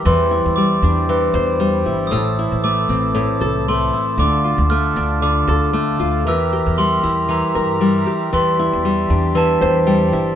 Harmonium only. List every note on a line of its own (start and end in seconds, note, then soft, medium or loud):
0.05 2.10 E4 medium
0.05 2.11 C5 medium
0.05 2.10 D5 medium
0.05 2.10 G5 medium
2.13 4.18 E4 medium
2.13 4.16 A4 medium
2.13 4.17 C5 medium
2.13 6.22 A5 medium
4.18 6.23 F4 medium
4.18 6.23 A4 medium
4.18 6.24 D5 medium
6.26 10.35 G4 medium
6.26 8.31 A#4 medium
6.26 8.31 E5 medium
6.26 8.30 A#5 loud
8.34 10.35 D5 medium
8.34 10.35 E5 medium
8.34 10.35 C6 loud